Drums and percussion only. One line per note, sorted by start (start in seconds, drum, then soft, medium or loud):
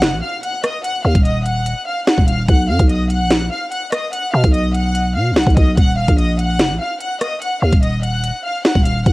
0.02 snare loud
0.02 closed hi-hat medium
0.43 closed hi-hat medium
0.64 cross-stick loud
0.64 closed hi-hat medium
0.84 closed hi-hat medium
1.15 kick medium
1.15 closed hi-hat medium
1.25 closed hi-hat medium
1.46 closed hi-hat medium
1.66 closed hi-hat medium
2.07 snare loud
2.07 closed hi-hat medium
2.18 kick loud
2.28 closed hi-hat medium
2.49 kick loud
2.49 closed hi-hat medium
2.79 kick medium
2.79 closed hi-hat medium
2.90 closed hi-hat medium
3.10 closed hi-hat medium
3.31 snare loud
3.31 closed hi-hat medium
3.72 closed hi-hat medium
3.92 cross-stick loud
3.92 closed hi-hat medium
4.13 closed hi-hat medium
4.44 kick medium
4.44 closed hi-hat medium
4.54 closed hi-hat medium
4.75 closed hi-hat medium
4.95 closed hi-hat medium
5.36 snare loud
5.36 closed hi-hat medium
5.43 kick loud
5.43 closed hi-hat medium
5.50 closed hi-hat medium
5.57 kick loud
5.57 closed hi-hat medium
5.77 kick loud
5.77 closed hi-hat medium
6.08 kick medium
6.08 closed hi-hat medium
6.18 closed hi-hat medium
6.39 closed hi-hat medium
6.59 snare loud
6.59 closed hi-hat medium
7.01 closed hi-hat medium
7.21 cross-stick medium
7.21 closed hi-hat medium
7.42 closed hi-hat medium
7.72 kick loud
7.72 closed hi-hat medium
7.83 closed hi-hat medium
8.03 closed hi-hat medium
8.24 closed hi-hat medium
8.65 snare loud
8.65 closed hi-hat medium
8.75 kick loud
8.85 closed hi-hat medium
9.06 kick loud
9.06 closed hi-hat medium